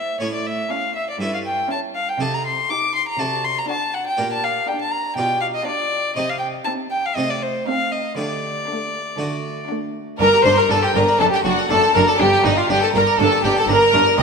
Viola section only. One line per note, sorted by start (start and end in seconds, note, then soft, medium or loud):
0.70 1.07 C#4 soft
1.69 2.07 C#4 medium
2.68 3.06 D#4 soft
3.68 4.05 D4 medium
4.68 5.05 D4 medium
5.67 6.04 D4 medium
6.67 7.04 C4 medium
7.67 8.05 C4 medium
8.68 9.06 A3 soft
9.69 10.07 A3 medium
10.19 10.27 D4 medium
10.45 10.53 D4 medium
10.69 10.77 D4 medium
10.95 11.03 D4 medium
11.20 11.28 D4 medium
11.45 11.53 D4 medium
11.70 11.78 D4 medium
11.94 12.02 D4 medium
12.19 12.27 D4 medium
12.44 12.52 D4 medium
12.70 12.78 D4 medium
12.95 13.03 D4 medium
13.20 13.28 D4 medium
13.46 13.54 D4 medium
13.70 13.78 D4 medium
13.95 14.03 D4 medium